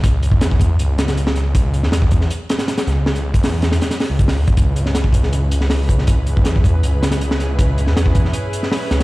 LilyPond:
<<
  \new Staff \with { instrumentName = "Analog synth pad" } { \time 4/4 \key cis \minor \tempo 4 = 159 r1 | r1 | r1 | <cis' e' gis' b'>1~ |
<cis' e' gis' b'>1~ | <cis' e' gis' b'>1 | }
  \new Staff \with { instrumentName = "Detuned saw bass" } { \clef bass \time 4/4 \key cis \minor cis,8. e,4~ e,16 cis,2~ | cis,8. e,4~ e,16 r4. cis,8~ | cis,8. e,4~ e,16 r8. cis,8. dis,8 | cis,1~ |
cis,8. e,4~ e,16 cis,2~ | cis,8. e,4~ e,16 r4. cis,8 | }
  \new DrumStaff \with { instrumentName = "Drums" } \drummode { \time 4/4 <hh bd>8 hh16 bd16 <hh sn>16 bd16 <hh bd>8 hh8 <hh sn>16 <hh sn>16 hh16 sn16 <hh sn>8 | <hh bd>8 hh16 sn16 <hh sn>16 bd16 <hh bd>16 sn16 hh8 <hh sn>16 <hh sn>16 <hh sn>16 <hh sn>16 <hh sn>8 | sn16 <hh sn>8 <hh bd>16 <hho sn>8 <hh sn>16 <hh sn>16 <hh sn>16 <hh sn>16 <hho sn>8 <hh bd>16 <hho sn>8 <hh bd>16 | <hh bd>8 hh16 sn16 <hh sn>16 bd16 <hh bd>16 sn16 hh8 hh16 sn16 <hho sn>8 <hh bd>16 sn16 |
<hh bd>8 hh16 bd16 <hh sn>16 bd16 <hh bd>8 hh8 <hh sn>16 <hh sn>16 hh16 sn16 <hh sn>8 | <hh bd>8 hh16 sn16 <hh sn>16 bd16 <hh bd>16 sn16 hh8 hh16 sn16 <hho sn>8 <hh sn>16 sn16 | }
>>